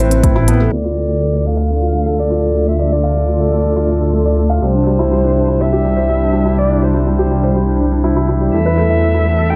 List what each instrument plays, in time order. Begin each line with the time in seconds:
Already playing: detuned saw bass A1, felt piano A3 C4 E4 A4 B4, ambient pad A3 C4 E4 B4
0.00 felt piano C5
0.11 felt piano C4, closed hi-hat
0.23 felt piano E4, kick, closed hi-hat
0.36 felt piano E4
0.48 felt piano B3, closed hi-hat
0.60 felt piano A3
0.72 detuned saw bass D2, felt piano A3, ambient pad A3 D4 F4 D5, violin D5
0.84 felt piano F4
0.97 felt piano A3
1.09 felt piano A4
1.21 felt piano A3
1.33 felt piano D5
1.45 felt piano A3, violin F5
1.57 felt piano F5
1.70 felt piano A3
1.82 felt piano F4
1.94 felt piano A3
2.06 felt piano A4
2.18 felt piano A3, violin D5
2.30 felt piano F4
2.42 felt piano A3
2.55 felt piano A4
2.67 felt piano A3, violin E5, ambient pad E6
2.79 felt piano D5
2.91 felt piano A3, violin D5
3.04 felt piano F5
3.16 felt piano A3
3.28 felt piano F4
3.40 felt piano A3
3.52 felt piano A4
3.65 felt piano A3
3.76 felt piano F4
3.89 felt piano A3
4.01 felt piano A4
4.13 felt piano A3
4.25 felt piano D5
4.38 felt piano A3
4.50 felt piano F5
4.62 detuned saw bass C2, felt piano G3, ambient pad G3 E4 C5, violin C5
4.75 felt piano D4
4.87 felt piano G3
4.99 felt piano E4
5.11 felt piano G3
5.24 felt piano D4
5.36 felt piano G3
5.48 felt piano E4
5.61 felt piano G3, violin E5
5.73 felt piano G4
5.85 felt piano G3
5.97 felt piano C5
6.09 felt piano G3
6.21 felt piano D4
6.33 felt piano G3
6.45 felt piano E4
6.58 felt piano G3, violin D5
6.70 felt piano D4
6.82 felt piano G3, violin C5
6.95 felt piano E4
7.07 felt piano G3
7.19 felt piano G4
7.31 felt piano G3
7.43 felt piano C5
7.56 felt piano G3
7.68 felt piano D4
7.80 felt piano D4
7.92 felt piano D4
8.04 felt piano E4
8.16 felt piano E4
8.29 felt piano E4
8.41 felt piano G3
8.52 detuned saw bass E2, ambient pad A3 B3 A4, felt piano A3, violin E5
8.66 felt piano B4
8.78 felt piano A3
8.90 felt piano E5
9.02 felt piano A3
9.14 felt piano E4
9.26 felt piano A3
9.38 felt piano A4
9.50 felt piano A3, violin G5